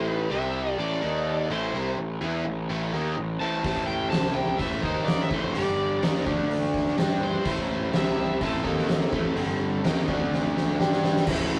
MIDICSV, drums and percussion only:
0, 0, Header, 1, 2, 480
1, 0, Start_track
1, 0, Tempo, 476569
1, 1755, Time_signature, 4, 2, 24, 8
1, 11678, End_track
2, 0, Start_track
2, 0, Title_t, "Drums"
2, 3669, Note_on_c, 9, 46, 45
2, 3671, Note_on_c, 9, 36, 116
2, 3770, Note_off_c, 9, 46, 0
2, 3772, Note_off_c, 9, 36, 0
2, 4150, Note_on_c, 9, 46, 49
2, 4159, Note_on_c, 9, 38, 110
2, 4251, Note_off_c, 9, 46, 0
2, 4260, Note_off_c, 9, 38, 0
2, 4627, Note_on_c, 9, 36, 101
2, 4630, Note_on_c, 9, 46, 49
2, 4728, Note_off_c, 9, 36, 0
2, 4731, Note_off_c, 9, 46, 0
2, 4868, Note_on_c, 9, 36, 78
2, 4968, Note_off_c, 9, 36, 0
2, 5108, Note_on_c, 9, 46, 46
2, 5117, Note_on_c, 9, 38, 104
2, 5208, Note_off_c, 9, 46, 0
2, 5217, Note_off_c, 9, 38, 0
2, 5347, Note_on_c, 9, 36, 98
2, 5448, Note_off_c, 9, 36, 0
2, 5585, Note_on_c, 9, 46, 56
2, 5685, Note_off_c, 9, 46, 0
2, 6067, Note_on_c, 9, 46, 51
2, 6076, Note_on_c, 9, 38, 107
2, 6168, Note_off_c, 9, 46, 0
2, 6177, Note_off_c, 9, 38, 0
2, 6309, Note_on_c, 9, 36, 98
2, 6410, Note_off_c, 9, 36, 0
2, 6553, Note_on_c, 9, 46, 50
2, 6653, Note_off_c, 9, 46, 0
2, 6791, Note_on_c, 9, 36, 75
2, 6800, Note_on_c, 9, 38, 36
2, 6891, Note_off_c, 9, 36, 0
2, 6901, Note_off_c, 9, 38, 0
2, 6922, Note_on_c, 9, 38, 30
2, 7023, Note_off_c, 9, 38, 0
2, 7028, Note_on_c, 9, 46, 49
2, 7037, Note_on_c, 9, 38, 97
2, 7129, Note_off_c, 9, 46, 0
2, 7138, Note_off_c, 9, 38, 0
2, 7508, Note_on_c, 9, 46, 53
2, 7509, Note_on_c, 9, 36, 113
2, 7609, Note_off_c, 9, 46, 0
2, 7610, Note_off_c, 9, 36, 0
2, 7988, Note_on_c, 9, 46, 47
2, 7997, Note_on_c, 9, 38, 100
2, 8089, Note_off_c, 9, 46, 0
2, 8098, Note_off_c, 9, 38, 0
2, 8472, Note_on_c, 9, 36, 103
2, 8472, Note_on_c, 9, 46, 47
2, 8572, Note_off_c, 9, 36, 0
2, 8572, Note_off_c, 9, 46, 0
2, 8711, Note_on_c, 9, 36, 79
2, 8719, Note_on_c, 9, 38, 32
2, 8811, Note_off_c, 9, 36, 0
2, 8819, Note_off_c, 9, 38, 0
2, 8845, Note_on_c, 9, 38, 33
2, 8946, Note_off_c, 9, 38, 0
2, 8950, Note_on_c, 9, 46, 47
2, 8959, Note_on_c, 9, 38, 105
2, 9051, Note_off_c, 9, 46, 0
2, 9060, Note_off_c, 9, 38, 0
2, 9192, Note_on_c, 9, 36, 101
2, 9293, Note_off_c, 9, 36, 0
2, 9430, Note_on_c, 9, 46, 51
2, 9531, Note_off_c, 9, 46, 0
2, 9914, Note_on_c, 9, 46, 48
2, 9923, Note_on_c, 9, 38, 97
2, 10014, Note_off_c, 9, 46, 0
2, 10024, Note_off_c, 9, 38, 0
2, 10154, Note_on_c, 9, 36, 103
2, 10254, Note_off_c, 9, 36, 0
2, 10405, Note_on_c, 9, 38, 51
2, 10505, Note_off_c, 9, 38, 0
2, 10645, Note_on_c, 9, 38, 66
2, 10746, Note_off_c, 9, 38, 0
2, 10883, Note_on_c, 9, 38, 83
2, 10984, Note_off_c, 9, 38, 0
2, 11000, Note_on_c, 9, 38, 67
2, 11101, Note_off_c, 9, 38, 0
2, 11119, Note_on_c, 9, 38, 92
2, 11220, Note_off_c, 9, 38, 0
2, 11244, Note_on_c, 9, 38, 76
2, 11344, Note_off_c, 9, 38, 0
2, 11348, Note_on_c, 9, 49, 127
2, 11355, Note_on_c, 9, 36, 117
2, 11449, Note_off_c, 9, 49, 0
2, 11456, Note_off_c, 9, 36, 0
2, 11585, Note_on_c, 9, 51, 59
2, 11678, Note_off_c, 9, 51, 0
2, 11678, End_track
0, 0, End_of_file